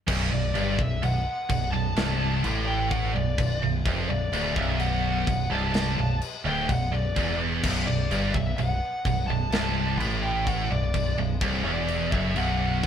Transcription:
0.07 B0 B1, kick, crash, china
0.32 B0 B1 D5
0.55 G1 G2, china
0.79 B0 B1 E5, kick
1.02 B0 B1 F#5, china
1.50 B0 B1, kick, china
1.71 B0 B1 A5
1.96 C1 C2, snare, china
2.44 A1 A2, china
2.66 G5
2.89 F#5, kick, china
3.13 B0 B1 D5
3.38 B0 B1, kick, china
3.62 B0 B1
3.85 F1 F2, kick, china
4.08 B0 B1 D5
4.32 D1 D2, china
4.55 B0 B1 E5, kick
4.79 F#5, china
5.27 B0 B1, kick, china
5.50 C1 C2 A5
5.74 snare, china
5.98 B0 B1
6.22 china
6.45 D1 D2 G5
6.69 B0 B1 F#5, kick, china
6.92 B0 B1 D5
7.16 E1 E2, kick, china
7.64 B0 B1, kick, china, crash
7.86 B0 B1 D5
8.11 G1 G2, china
8.33 B0 B1 E5, kick
8.57 B0 B1 F#5, china
9.05 B0 B1, kick, china
9.27 B0 B1 A5
9.51 C1 C2, snare, china
9.97 A1 A2, china
10.23 G5
10.46 F#5, kick, china
10.70 B0 B1 D5
10.94 B0 B1, kick, china
11.17 B0 B1
11.41 C1 C2, kick, china
11.65 E1 E2 D5
11.88 china
12.12 F#1 F#2 E5, kick
12.36 B0 B1 F#5, china
12.84 C1 C2, kick

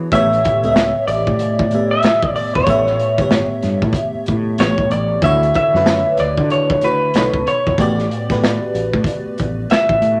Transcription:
Already playing: E3 B3 D4 F#4 G#4 C#5
0.12 A1 A2 A3 B3 G4 C#5 E5, kick, closed hi-hat
0.33 closed hi-hat
0.44 kick, closed hi-hat
0.63 C#2 A2 A3 B3 G4 D#5, closed hi-hat
0.72 E5
0.76 finger snap, snare, closed hi-hat
1.08 A1 D5, closed hi-hat
1.27 A2, kick
1.39 closed hi-hat
1.59 kick
1.71 A2 A3 B3 G4 E5, closed hi-hat
1.91 E5
2.03 finger snap, muted fretless electric bass stroke, snare, closed hi-hat
2.23 A1, kick
2.36 D5, open hi-hat
2.55 E1 C#5, kick
2.67 A1 A2 A3 B3 G4 E5, kick, closed hi-hat
2.87 snare
2.99 closed hi-hat
3.18 G1 A2 A3 B3 G4 C#5, kick, closed hi-hat
3.31 finger snap, snare, closed hi-hat
3.63 G2, snare, closed hi-hat
3.82 A2, kick
3.93 kick, closed hi-hat
4.14 muted fretless electric bass stroke
4.26 A2, kick, closed hi-hat
4.58 A1 A2 A3 B3 G4 C#5, finger snap, snare, closed hi-hat
4.78 B1, kick
4.90 A1 D5, closed hi-hat
5.22 D2 D3 A3 E4 F#4 C#5 E5, kick, closed hi-hat
5.43 closed hi-hat
5.54 E5, kick, closed hi-hat
5.74 F#2 D3 A3 E4 F#4 B4, snare
5.86 finger snap, snare, closed hi-hat
6.17 D2 D5, snare, closed hi-hat
6.37 D3, kick
6.50 C#5, closed hi-hat
6.70 kick
6.81 D3 A3 E4 F#4 B4 C#5, closed hi-hat
7.14 B1 B2 B3 D#4 A4 C#5, finger snap, snare, closed hi-hat
7.34 C#2, kick
7.47 C#5, closed hi-hat
7.67 E1, kick
7.78 A1 A2 A3 B3 F#4 G4 D5, kick, closed hi-hat
7.99 snare, closed hi-hat
8.11 closed hi-hat
8.29 A2 A3 B3 F#4 G4 B4, kick, snare, closed hi-hat
8.44 finger snap, snare, closed hi-hat
8.74 A1, closed hi-hat
8.94 A2, kick
9.04 kick, closed hi-hat
9.26 muted fretless electric bass stroke
9.38 A1, kick, closed hi-hat
9.70 E5, finger snap, snare, closed hi-hat
9.89 A1, kick
10.02 A2, closed hi-hat

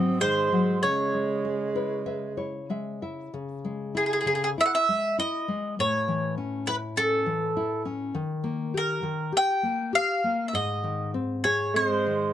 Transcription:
Already playing: G#2 F#3 C4 D#5
0.20 D#3 G#3 C5
0.52 F#3
0.81 C#3 G#3 C#5
1.14 G#3
1.45 G#4
1.75 E4 B4
2.06 B4 E5
2.37 E4 C#5
2.70 G#3 E5
3.02 E4 E5
3.34 C#3
3.65 G#3
3.95 E4 G#4
4.06 G#4
4.13 G#4
4.21 G#4
4.26 C#3 G#4
4.35 G#4
4.44 G#4
4.58 E4 E5
4.66 F#5
4.75 E5
4.89 G#3
5.18 E4 D#5
5.48 G#3
5.79 A2 C#5
6.08 E3
6.38 C#4
6.67 E4 B4
6.97 C#4 A4
7.26 E3
7.57 E4
7.85 C#4
8.15 D#3
8.44 A#3
8.74 G4 A#4
9.03 D#3
9.32 G4
9.37 G5
9.63 A#3
9.93 G4 F5
10.24 A#3
10.48 E5
10.53 G#2 D#5
10.84 D#3
11.14 C4
11.44 G#4 C#5
11.74 G#3 C4 C5
12.07 D#3

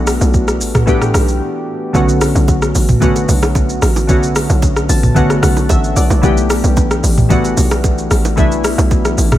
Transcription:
Already playing: B1 E3 A3 B3 D4 F#4 G4 A4
0.07 cross-stick, open hi-hat, shaker
0.21 B1, shaker
0.34 kick, shaker
0.48 cross-stick, shaker
0.61 A1, open hi-hat, shaker
0.75 kick, cross-stick, mid tom, shaker
0.86 E3 A3 B3 D4 G4, kick, shaker
1.01 cross-stick, mid tom, shaker
1.14 B1, cross-stick, open hi-hat, shaker
1.28 shaker
1.93 B1 D3 A3 B3 C#4 F#4, kick, low conga, shaker
2.09 shaker
2.21 cross-stick, open hi-hat, low bongo, shaker
2.35 B1, shaker
2.48 kick, high bongo, shaker
2.62 cross-stick, shaker
2.75 A1, open hi-hat, shaker
2.89 kick, mid tom, shaker
3.00 D3 A3 B3 C#4 F#4, kick, low conga, shaker
3.16 high bongo, shaker
3.29 B1, open hi-hat, low conga, shaker
3.42 cross-stick, low bongo, shaker
3.55 kick, high bongo, shaker
3.69 shaker
3.82 A1, cross-stick, open hi-hat, shaker
3.96 low bongo, shaker
4.07 B1 D3 A3 B3 C#4 F#4, kick, low conga, shaker
4.23 shaker
4.36 cross-stick, open hi-hat, low bongo, shaker
4.50 B1, shaker
4.62 kick, high bongo, shaker
4.76 cross-stick, shaker
4.89 A1 A5, open hi-hat, shaker
5.03 kick, mid tom, shaker
5.15 D3 A3 B3 C#4 F#4 F#5, kick, low conga, shaker
5.30 cross-stick, high bongo, shaker
5.43 B1 F#5, cross-stick, open hi-hat, low conga, shaker
5.57 low bongo, shaker
5.69 A1 E5, kick, high bongo, shaker
5.84 shaker
5.96 B1 D5, open hi-hat, shaker
6.10 B1, low bongo, shaker
6.22 B1 E3 A3 B3 D4 G4, kick, low conga, shaker
6.37 shaker
6.50 cross-stick, open hi-hat, low bongo, shaker
6.64 B1, shaker
6.77 kick, high bongo, shaker
6.91 cross-stick, shaker
7.04 A1, open hi-hat, shaker
7.18 kick, mid tom, shaker
7.29 E3 A3 B3 D4 F#4, kick, low conga, shaker
7.44 high bongo, shaker
7.57 B1, open hi-hat, low conga, shaker
7.71 cross-stick, low bongo, shaker
7.84 kick, high bongo, shaker
7.98 shaker
8.11 A1, cross-stick, open hi-hat, shaker
8.25 low bongo, shaker
8.36 B1 E3 A3 B3 D4 E4, kick, low conga, shaker
8.52 shaker
8.64 cross-stick, open hi-hat, low bongo, shaker
8.78 B1, low bongo, shaker
8.91 kick, high bongo, shaker
9.05 cross-stick, shaker
9.18 A1, open hi-hat, shaker
9.32 kick, cross-stick, mid tom, shaker

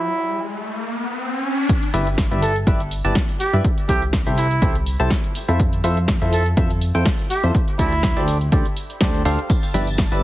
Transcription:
Already playing: riser
0.00 E4
1.69 kick, closed hi-hat, crash, cabasa
1.83 closed hi-hat, cabasa
1.94 G1 E4 G4 B4 D5 E5, open hi-hat, cabasa
2.07 closed hi-hat, cabasa
2.18 kick, snare, closed hi-hat, cabasa
2.31 G1 E4 G4 B4 D5 E5, closed hi-hat, cabasa
2.42 A4, open hi-hat, cabasa
2.56 closed hi-hat, cabasa
2.67 G1 E4 G4 B4 D5 E5, kick, closed hi-hat, cabasa
2.80 closed hi-hat, cabasa
2.91 open hi-hat, cabasa
3.05 G1 E4 G4 B4 D5 A5, closed hi-hat, cabasa
3.15 kick, snare, closed hi-hat, cabasa
3.29 closed hi-hat, cabasa
3.40 G4, open hi-hat, cabasa
3.53 G2 E4 G4 B4 D5 E5, closed hi-hat, cabasa
3.64 kick, closed hi-hat, cabasa
3.78 closed hi-hat, cabasa
3.89 C2 E4 G4 A4 C5 E5, kick, open hi-hat, cabasa
4.02 closed hi-hat, cabasa
4.13 kick, snare, closed hi-hat, cabasa
4.27 C2 E4 G4 A4 C5 E5, closed hi-hat, cabasa
4.38 E4, open hi-hat, cabasa
4.51 closed hi-hat, cabasa
4.62 C2 E4 G4 A4 C5 E5, kick, closed hi-hat, cabasa
4.75 closed hi-hat, cabasa
4.86 open hi-hat, cabasa
5.00 C2 E4 G4 A4 C5 A5, closed hi-hat, cabasa
5.10 kick, snare, closed hi-hat, cabasa
5.24 closed hi-hat, cabasa
5.35 open hi-hat, cabasa
5.48 F2 E4 F4 A4 C5 E5, closed hi-hat, cabasa
5.60 kick, closed hi-hat, cabasa
5.73 closed hi-hat, cabasa
5.84 F2 E4 F4 A4 C5 E5, open hi-hat, cabasa
5.97 closed hi-hat, cabasa
6.08 kick, snare, closed hi-hat, cabasa
6.22 F2 E4 F4 A4 C5 E5, closed hi-hat, cabasa
6.33 A4, open hi-hat, cabasa
6.46 closed hi-hat, cabasa
6.57 F2 E4 F4 A4 C5 E5, kick, closed hi-hat, cabasa
6.70 closed hi-hat, cabasa
6.81 open hi-hat, cabasa
6.95 F2 E4 F4 A4 C5 G5, closed hi-hat, cabasa
7.06 kick, snare, closed hi-hat, cabasa
7.19 closed hi-hat, cabasa
7.30 G4, open hi-hat, cabasa
7.43 F2 E4 F4 A4 C5 E5, closed hi-hat, cabasa
7.55 kick, closed hi-hat, cabasa
7.68 closed hi-hat, cabasa
7.79 D2 D4 E4 G4 A4 C5 D5, kick, open hi-hat, cabasa
7.92 closed hi-hat, cabasa
8.03 kick, snare, closed hi-hat, cabasa
8.17 D2 D4 G4 A4 C5 D5, closed hi-hat, cabasa
8.28 open hi-hat, cabasa
8.41 closed hi-hat, cabasa
8.52 D2 D4 G4 A4 C5 D5, kick, closed hi-hat, cabasa
8.65 closed hi-hat, cabasa
8.77 open hi-hat, cabasa
8.90 closed hi-hat, cabasa
9.01 D2 D4 G4 A4 C5 D5, kick, snare, closed hi-hat, cabasa
9.14 closed hi-hat, cabasa
9.25 D2 D4 G4 A4 C5 F5, open hi-hat, cabasa
9.39 closed hi-hat, cabasa
9.50 A5 A6, kick, closed hi-hat, tambourine, cabasa
9.63 closed hi-hat, tambourine, cabasa
9.74 G1 E4 G4 B4 D5 E5, open hi-hat, high conga, cabasa
9.87 closed hi-hat, tambourine, cabasa
9.98 kick, snare, closed hi-hat, tambourine, cabasa
10.12 G1 E4 G4 B4 D5 E5, closed hi-hat, tambourine, cabasa

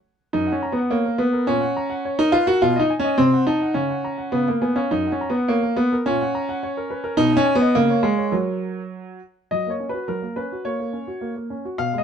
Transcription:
0.33 F#2 D#4
0.47 F#5
0.52 C#4
0.63 A#5
0.72 B3
0.77 F#5
0.90 A#3 C#5
1.06 A#4
1.18 B3 B4
1.33 A#4
1.47 A#2 C#4
1.61 F#5
1.77 A#5
1.90 F#5
2.05 C#5
2.19 D#4 A#4
2.32 F4 B4
2.47 F#4 A#4
2.62 B2 F4
2.76 D#4 D#5
2.90 G#5
3.00 C#4
3.04 D#5
3.18 C3 C4
3.33 F#5
3.47 D#4 A5
3.61 F#5
3.74 C#3 C#4
3.89 F#5
4.05 A#5
4.18 F#5
4.32 C#3 B3
4.48 A#3 F5
4.62 B3 G#5
4.76 C#4 F5
4.91 F#2 D#4
5.07 F#5
5.12 C#4
5.21 A#5
5.30 B3
5.34 F#5
5.48 A#3 C#5
5.63 A#4
5.77 B3 B4
5.93 A#4
6.06 A#2 C#4
6.21 F#5
6.35 A#5
6.49 F#5
6.63 C#5
6.77 A#4
6.90 B4
7.04 A#4
7.17 B2 D#4
7.32 D#5
7.37 C#4
7.46 G#5
7.55 B3
7.62 D#5
7.75 C#3 A#3
7.90 C#5
8.03 G#3 F5
8.18 C#5
8.32 F#3 A#4 C#5
9.51 F#3 D#5
9.66 A#3 C#5
9.80 C#4
9.89 B4
9.94 F#4
10.08 F#3 A#4
10.22 A#3
10.36 C#4 B4
10.52 F#4
10.65 A#3 C#5
10.80 A#3
10.93 C#4
11.08 F#4
11.21 A#3
11.50 C#4
11.65 F#4
11.78 B2 F5
11.94 G#3
11.98 D#5

